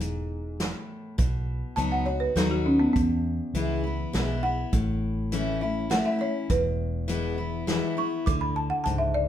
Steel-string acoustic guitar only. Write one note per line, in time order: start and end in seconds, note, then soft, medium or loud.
0.00 0.57 G#2 medium
0.60 1.16 A2 medium
1.18 2.31 B2 medium
1.77 2.06 F#3 medium
1.77 2.06 B3 medium
1.77 2.07 D#4 medium
1.77 2.05 F#4 loud
2.06 2.36 D#4 soft
2.06 2.35 F#4 medium
2.36 2.92 F#3 medium
2.36 2.93 B3 medium
2.36 2.93 D#4 medium
2.36 2.93 F#4 loud
2.97 4.08 E2 medium
3.55 3.83 E3 medium
3.55 3.84 G#3 medium
3.55 3.84 B3 medium
3.55 3.82 E4 loud
3.84 4.14 B3 medium
3.84 4.12 E4 medium
4.13 4.42 E3 medium
4.13 4.43 G#3 medium
4.13 4.43 B3 loud
4.13 4.42 E4 loud
4.43 4.73 B3 soft
4.43 4.72 E4 medium
4.73 5.85 A2 medium
5.32 5.60 E3 medium
5.32 5.61 A3 medium
5.32 5.61 C#4 loud
5.32 5.60 E4 loud
5.61 5.90 C#4 medium
5.61 5.90 E4 medium
5.90 6.19 E3 medium
5.90 6.19 A3 medium
5.90 6.19 C#4 loud
5.90 6.17 E4 loud
6.19 6.49 C#4 soft
6.19 6.48 E4 medium
6.50 7.62 E2 medium
7.08 7.37 E3 loud
7.08 7.37 G#3 medium
7.08 7.38 B3 loud
7.08 7.37 E4 loud
7.38 7.68 B3 soft
7.38 7.67 E4 medium
7.67 7.96 E3 loud
7.67 7.97 G#3 medium
7.67 7.97 B3 loud
7.67 7.96 E4 medium
7.97 8.27 B3 medium
7.97 8.26 E4 medium
8.27 9.28 D3 medium
8.86 9.28 G#2 loud